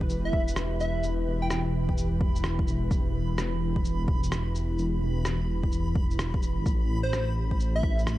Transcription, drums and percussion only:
0.01 kick medium
0.10 shaker medium
0.33 kick loud
0.48 shaker medium
0.56 cross-stick loud
0.56 shaker medium
0.80 shaker medium
1.03 shaker medium
1.50 cross-stick loud
1.50 shaker medium
1.89 kick medium
1.98 shaker medium
2.21 kick loud
2.36 shaker medium
2.44 cross-stick loud
2.44 shaker medium
2.59 kick loud
2.67 shaker medium
2.91 kick loud
2.91 shaker medium
3.38 cross-stick loud
3.38 shaker medium
3.76 kick medium
3.85 shaker medium
4.08 kick loud
4.23 shaker medium
4.32 cross-stick loud
4.32 shaker medium
4.55 shaker medium
4.78 shaker soft
5.25 cross-stick loud
5.25 shaker medium
5.63 kick medium
5.72 shaker medium
5.95 kick loud
6.11 shaker medium
6.19 cross-stick loud
6.19 shaker medium
6.34 kick loud
6.42 shaker medium
6.66 kick loud
6.66 shaker medium
7.13 cross-stick loud
7.13 shaker soft
7.51 kick medium
7.60 shaker medium
7.83 kick loud
7.99 shaker medium
8.07 cross-stick loud
8.07 shaker medium

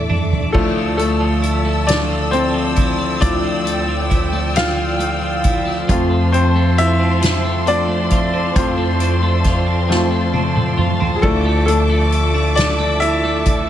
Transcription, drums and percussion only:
0.10 mid tom medium
0.32 floor tom medium
0.55 kick loud
0.55 crash medium
0.99 closed hi-hat medium
1.43 closed hi-hat soft
1.88 snare loud
1.88 closed hi-hat medium
2.33 closed hi-hat soft
2.76 kick medium
2.76 closed hi-hat medium
3.22 kick loud
3.22 closed hi-hat medium
3.67 closed hi-hat medium
4.11 kick medium
4.11 closed hi-hat soft
4.56 snare loud
4.56 closed hi-hat medium
5.00 closed hi-hat soft
5.44 kick medium
5.44 closed hi-hat medium
5.89 kick loud
5.89 closed hi-hat medium
6.34 closed hi-hat soft
6.78 closed hi-hat soft
7.22 snare loud
7.22 closed hi-hat medium
7.67 closed hi-hat soft
8.10 kick medium
8.10 closed hi-hat medium
8.56 kick loud
8.56 closed hi-hat medium
9.00 closed hi-hat medium
9.44 kick medium
9.44 snare soft
9.44 closed hi-hat soft
9.91 snare medium
10.34 high tom medium
10.56 mid tom medium
10.78 mid tom medium
11.01 floor tom medium
11.23 kick loud
11.23 crash medium
11.68 closed hi-hat medium
12.12 closed hi-hat soft
12.57 snare loud
12.57 closed hi-hat medium
13.02 closed hi-hat soft
13.46 kick medium
13.46 closed hi-hat medium

